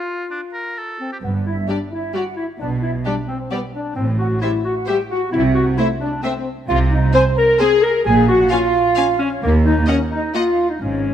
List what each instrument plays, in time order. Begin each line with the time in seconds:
Already playing: oboe F4, clarinet F4, flute section F5
0.30 oboe D4
0.53 oboe A#4
0.78 oboe A4
0.99 french horn section C4, clarinet C4, flute section C5
1.12 oboe G4
1.22 double bass section G1, cello section G2, french horn section B3, clarinet B3, flute section B4
1.44 french horn section E4, clarinet E4, flute section E5
1.68 viola section G3, french horn section D4, clarinet D4, violin section G4 D5, flute section D5
1.91 french horn section E4, clarinet E4, flute section E5
2.14 viola section G3, french horn section F#4, clarinet F#4, violin section G4 D5, flute section F#5
2.36 clarinet E4, french horn section E4, flute section E5
2.60 double bass section B1, cello section B2, french horn section D4, clarinet D4, flute section D5
2.82 french horn section E4, clarinet E4, flute section E5
3.05 viola section G3, clarinet D4, french horn section D4, violin section G4 D5, flute section D5
3.27 clarinet C4, french horn section C4, flute section C5
3.50 viola section G3, clarinet B3, french horn section B3, violin section G4 D5, flute section B4
3.73 clarinet D4, french horn section D4, flute section D5
3.96 double bass section A1, cello section A2, clarinet C4, french horn section C4, flute section C5
4.18 clarinet F#4, french horn section F#4, flute section F#5
4.41 viola section G3, clarinet E4, french horn section E4, violin section C5 E5, flute section E5
4.64 clarinet F#4, french horn section F#4, flute section F#5
4.86 viola section G3, clarinet G4, french horn section G4, violin section C5 E5, flute section G5
5.09 clarinet F#4, french horn section F#4, flute section F#5
5.32 double bass section C2, cello section C3, clarinet E4, french horn section E4, flute section E5
5.54 clarinet F#4, french horn section F#4, flute section F#5
5.78 viola section A3, clarinet E4, french horn section E4, violin section C5 E5, flute section E5
6.00 clarinet D4, french horn section D4, flute section D5
6.23 viola section A3, clarinet C4, french horn section C4, violin section C5 E5, flute section C5
6.68 double bass section C2, cello section C3, clarinet F4, french horn section F4, flute section F5
6.91 french horn section D#4, clarinet D#4, flute section D#5
7.13 viola section C4, violin section C5 G#5, french horn section C5, clarinet C5, flute section C6
7.36 french horn section A#4, clarinet A#4, flute section A#5
7.59 viola section C4, clarinet G#4, french horn section G#4, violin section C5 G#5, flute section G#5
7.83 french horn section A#4, clarinet A#4, flute section A#5
8.04 double bass section A#1, cello section A#2, french horn section G#4, clarinet G#4, flute section G#5
8.28 clarinet F#4, french horn section F#4, flute section F#5
8.50 viola section C#4, clarinet F4, french horn section F4, violin section F5 G#5, flute section F5
8.96 viola section C#4, violin section F5 G#5
9.18 clarinet C#4, french horn section C#4, flute section C#5
9.42 cello section D#2, double bass section D#2, clarinet A#3, french horn section A#3, flute section A#4
9.64 clarinet D#4, french horn section D#4, flute section D#5
9.88 viola section A#3, french horn section C#4, clarinet C#4, flute section C#5, violin section D#5 F#5
10.11 french horn section D#4, clarinet D#4, flute section D#5
10.34 viola section A#3, french horn section F4, clarinet F4, violin section D#5 F#5, flute section F5
10.70 clarinet D#4, french horn section D#4, flute section D#5
10.81 double bass section G#1, cello section G#2, clarinet C#4, french horn section C#4, flute section C#5